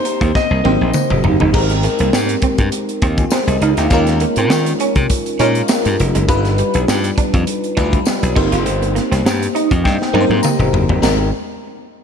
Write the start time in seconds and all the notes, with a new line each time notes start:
Already playing: A#3 C4 D4 D#4 G4 C5
0.05 muted clean electric guitar stroke, closed hi-hat
0.21 D#2 A#3, kick, closed hi-hat
0.35 D#5, kick, snare
0.51 C2
0.64 G#1 A#3 C4 D#4 G4 C5, high tom
0.81 A#1
0.93 muted clean electric guitar stroke, mid tom, tambourine
1.10 F1, mid tom
1.24 F#1 D#4, floor tom
1.40 G1 D#4, floor tom
1.53 G#1 G#3 C4 D#4 G4 A#4, kick, crash
1.70 muted clean electric guitar stroke, snare, closed hi-hat
1.83 G#3, snare, closed hi-hat
1.99 C2 A#3, closed hi-hat
2.13 G#2, snare, tambourine
2.29 closed hi-hat
2.42 C4, kick, closed hi-hat
2.58 G2, kick, closed hi-hat
2.72 closed hi-hat
2.89 closed hi-hat
3.02 D#2 C4, kick, closed hi-hat
3.18 F4 G#4, kick, closed hi-hat
3.31 G#4 C5, muted clean electric guitar stroke, snare, tambourine
3.47 C2 C5 D#5, closed hi-hat
3.61 C#2 D#4 F5, closed hi-hat
3.77 D2 D#4 D#5 G5, snare, closed hi-hat
3.90 D#2 G#3 C#4 D#4 F4 A#4, kick, closed hi-hat
4.07 muted clean electric guitar stroke, snare, closed hi-hat
4.20 A#3, closed hi-hat
4.36 G#2 C4, closed hi-hat
4.50 D#3, snare, tambourine
4.66 closed hi-hat
4.80 C#4, closed hi-hat
4.95 C3, kick, closed hi-hat
5.10 kick, closed hi-hat
5.26 closed hi-hat
5.39 A#2 G#3 C#4 D#4 F4 A#4, closed hi-hat
5.55 closed hi-hat
5.68 A#3, snare, tambourine
5.85 G2, muted clean electric guitar stroke, closed hi-hat
6.00 F1, closed hi-hat
6.15 F#1 G#3, closed hi-hat
6.28 G1 G3 D4 D#4 F4 B4, kick, closed hi-hat
6.45 muted clean electric guitar stroke, snare, closed hi-hat
6.58 G3, closed hi-hat
6.74 B1 B3, closed hi-hat
6.88 G2, snare, tambourine
7.04 closed hi-hat
7.18 D4, kick, closed hi-hat
7.34 F2, kick, closed hi-hat
7.47 closed hi-hat
7.64 closed hi-hat
7.77 D2 G3 D4 D#4 F4 B4, kick, closed hi-hat
7.93 kick, closed hi-hat
8.06 muted clean electric guitar stroke, snare, tambourine
8.23 B1, closed hi-hat
8.36 G1 A#3 C4 D#4 G4 C5, kick, crash
8.52 F#1 F4, snare, closed hi-hat
8.66 G1, closed hi-hat
8.82 muted clean electric guitar stroke, closed hi-hat
8.95 A#3, snare, closed hi-hat
9.12 C2 C4, snare, closed hi-hat
9.25 G2, snare, tambourine
9.43 closed hi-hat
9.55 D#4 D#5, closed hi-hat
9.71 F2, kick, closed hi-hat
9.84 G2 G5, kick, snare
10.02 snare
10.13 G2 A#3 C4 D#4 G4 A#4, high tom
10.21 C5
10.30 G#2, high tom
10.42 A#3 A#5, mid tom, tambourine
10.59 F1, muted clean electric guitar stroke, mid tom
10.73 F#1, floor tom
10.89 G1 G3, floor tom
11.02 G#1 G#3 C4 D#4 G4 A#4, snare, china, tambourine